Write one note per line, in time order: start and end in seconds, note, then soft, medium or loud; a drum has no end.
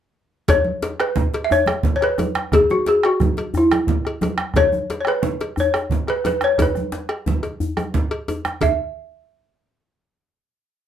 0.48 0.97 C#5 medium
0.48 bombo rim soft
0.48 bombo low medium
0.48 cowbell medium
0.48 djembe slap soft
0.48 low conga medium
0.48 djembe bass medium
0.65 high conga medium
0.82 cowbell medium
0.82 djembe slap medium
1.00 1.45 B4 medium
1.00 bombo rim medium
1.00 cowbell medium
1.00 djembe slap soft
1.16 bombo rim soft
1.16 bombo low loud
1.16 djembe tone medium
1.16 low conga medium
1.34 cowbell medium
1.34 djembe slap medium
1.44 1.51 E5 medium
1.50 1.95 C#5 medium
1.50 bombo rim soft
1.50 high conga soft
1.50 djembe bass medium
1.66 bombo rim medium
1.66 cowbell soft
1.66 high conga medium
1.66 djembe tone soft
1.83 bombo low medium
1.83 djembe slap medium
1.83 high conga soft
1.83 low conga medium
1.96 2.02 C#5 medium
2.01 2.55 B4 medium
2.01 bombo rim soft
2.01 cowbell soft
2.18 bombo rim soft
2.18 cowbell soft
2.18 djembe tone medium
2.18 high conga medium
2.35 bombo rim medium
2.35 djembe slap medium
2.52 2.71 G#4 medium
2.52 bombo rim soft
2.52 bombo low loud
2.52 cowbell medium
2.52 djembe slap soft
2.52 djembe bass medium
2.52 low conga medium
2.70 2.88 F#4 medium
2.70 djembe tone soft
2.70 high conga medium
2.86 3.05 G#4 medium
2.86 cowbell soft
2.86 djembe slap medium
3.03 3.57 F#4 medium
3.03 bombo rim medium
3.03 cowbell soft
3.20 bombo rim soft
3.20 bombo low loud
3.20 djembe tone medium
3.20 high conga medium
3.20 low conga medium
3.37 cowbell medium
3.37 djembe slap soft
3.54 4.36 E4 medium
3.54 bombo rim soft
3.54 high conga soft
3.54 djembe bass medium
3.71 bombo rim medium
3.71 cowbell soft
3.71 djembe tone medium
3.71 high conga medium
3.87 bombo low loud
3.87 djembe slap medium
3.87 high conga soft
3.87 low conga medium
4.05 bombo rim soft
4.05 cowbell medium
4.21 bombo rim soft
4.21 cowbell soft
4.21 djembe tone medium
4.21 high conga medium
4.38 bombo rim medium
4.38 djembe slap soft
4.54 4.97 C#5 loud
4.54 bombo rim soft
4.54 bombo low medium
4.54 cowbell medium
4.54 djembe slap soft
4.54 djembe bass medium
4.54 low conga medium
4.72 high conga soft
4.72 djembe tone medium
4.90 cowbell soft
4.90 djembe slap medium
5.01 5.07 C#5 medium
5.05 5.55 B4 medium
5.05 bombo rim medium
5.05 cowbell soft
5.05 djembe slap soft
5.22 bombo rim soft
5.22 high conga medium
5.22 djembe tone medium
5.22 low conga medium
5.41 cowbell soft
5.41 djembe slap soft
5.56 bombo rim soft
5.56 high conga soft
5.56 djembe bass medium
5.60 6.11 C#5 medium
5.74 bombo rim medium
5.74 cowbell soft
5.74 djembe tone soft
5.90 bombo low medium
5.90 djembe slap medium
5.90 high conga soft
5.90 low conga medium
6.07 6.17 B4 medium
6.07 bombo rim soft
6.07 cowbell soft
6.24 6.43 B4 medium
6.24 bombo rim soft
6.24 cowbell soft
6.24 djembe tone medium
6.24 high conga medium
6.41 6.51 C#5 medium
6.41 bombo rim medium
6.41 djembe slap medium
6.58 bombo rim soft
6.58 bombo low medium
6.58 cowbell medium
6.58 high conga soft
6.58 djembe bass medium
6.58 low conga medium
6.62 8.26 B4 medium
6.75 bombo rim soft
6.75 djembe tone medium
6.75 high conga medium
6.92 bombo rim soft
6.92 djembe slap medium
7.09 bombo rim medium
7.09 cowbell soft
7.26 bombo low medium
7.26 djembe tone medium
7.26 high conga medium
7.26 low conga medium
7.43 cowbell soft
7.43 djembe slap medium
7.60 djembe bass medium
7.77 bombo rim medium
7.77 cowbell soft
7.77 high conga soft
7.77 djembe tone medium
7.94 bombo low medium
7.94 djembe slap medium
7.94 low conga medium
8.11 cowbell medium
8.28 cowbell soft
8.28 djembe tone medium
8.45 bombo rim medium
8.45 djembe slap medium
8.45 high conga soft
8.61 8.78 E5 medium
8.61 bombo low medium
8.61 cowbell medium
8.61 low conga medium
8.61 djembe bass medium